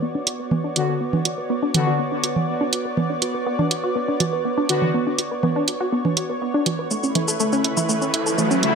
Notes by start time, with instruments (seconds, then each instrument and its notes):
Already playing: analog synth pad B3 F#4 C#5 D5
0.02 synth pluck B3
0.15 synth pluck D4
0.27 synth pluck F#4, closed hi-hat
0.40 synth pluck B4
0.51 synth pluck B3, low conga
0.64 synth pluck D4
0.76 analog polysynth D3 B3 F#4, synth pluck F#4, closed hi-hat
0.89 synth pluck B4
1.01 synth pluck B3
1.13 synth pluck D4, low conga
1.25 synth pluck F#4, closed hi-hat
1.38 synth pluck B4
1.50 synth pluck B3
1.63 synth pluck D4
1.74 analog polysynth D3 B3 F#4, synth pluck F#4, closed hi-hat, low conga
1.87 synth pluck F#4
1.99 synth pluck B3
2.12 synth pluck D4
2.24 synth pluck F#4, closed hi-hat
2.36 synth pluck B4, low conga
2.48 synth pluck B3
2.61 synth pluck D4
2.73 synth pluck F#4, closed hi-hat
2.85 synth pluck B4
2.97 synth pluck B3, low conga
3.10 synth pluck D4
3.22 synth pluck F#4, closed hi-hat
3.34 synth pluck B4
3.46 synth pluck B3
3.59 synth pluck D4, low conga
3.71 synth pluck F#4, closed hi-hat
3.84 synth pluck F#4
3.96 synth pluck B3
4.08 synth pluck D4
4.20 synth pluck F#4, closed hi-hat, low conga
4.33 synth pluck B4
4.45 synth pluck B3
4.58 synth pluck D4
4.69 analog polysynth D3 B3 F#4, synth pluck F#4, closed hi-hat
4.82 synth pluck B4, low conga
4.94 synth pluck B3
5.07 synth pluck D4
5.18 synth pluck F#4, closed hi-hat
5.31 synth pluck B4
5.43 synth pluck B3, low conga
5.56 synth pluck D4
5.68 synth pluck F#4, closed hi-hat
5.81 synth pluck F#4
5.93 synth pluck B3
6.05 synth pluck D4, low conga
6.17 synth pluck F#4, closed hi-hat
6.30 synth pluck B4
6.42 synth pluck B3
6.54 synth pluck D4
6.66 synth pluck F#4, closed hi-hat, low conga
6.79 synth pluck B4
6.91 analog synth pad A3 E4 B4, synth pluck A3, riser, shaker
7.03 synth pluck C#4, shaker
7.15 synth pluck E4, closed hi-hat, low conga
7.28 synth pluck A4, shaker
7.40 synth pluck A3, shaker
7.53 synth pluck C#4, shaker
7.64 synth pluck E4, closed hi-hat
7.77 synth pluck E4, low conga, shaker
7.89 synth pluck A3, shaker
8.02 synth pluck C#4, shaker
8.14 synth pluck E4, closed hi-hat
8.26 synth pluck A4, shaker
8.38 synth pluck A3, low conga, shaker
8.51 synth pluck C#4, shaker
8.63 analog polysynth C#3 A3 E4, synth pluck A3, closed hi-hat